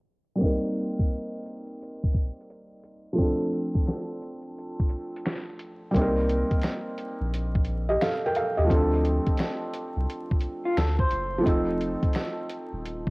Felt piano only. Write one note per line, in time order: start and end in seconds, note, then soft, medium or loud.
0.36 3.11 G3 medium
0.36 3.12 A#3 medium
0.41 3.14 C4 medium
0.41 3.15 D#4 medium
0.46 3.16 A#4 medium
3.13 5.87 F3 medium
3.13 5.89 A3 medium
3.18 5.90 C4 medium
3.18 5.91 D4 medium
3.23 5.92 A4 medium
5.91 7.95 G3 medium
5.91 7.97 A#3 medium
5.96 7.98 C4 medium
5.96 7.99 D#4 medium
6.01 7.67 A#4 medium
7.89 8.01 G4 soft
7.89 8.00 D#5 medium
8.02 8.23 A4 medium
8.02 8.23 F5 medium
8.26 8.36 A#4 medium
8.26 8.36 G5 medium
8.36 8.58 A4 soft
8.36 8.58 F5 medium
8.57 8.91 G4 soft
8.57 8.91 D#5 medium
8.64 11.37 F3 medium
8.64 11.40 A3 medium
8.70 11.42 C4 medium
8.70 11.43 D4 medium
8.75 11.44 A4 medium
11.38 13.10 F3 medium
11.38 13.10 A3 medium
11.43 13.10 C4 medium
11.43 13.10 D#4 medium
11.48 13.10 A4 medium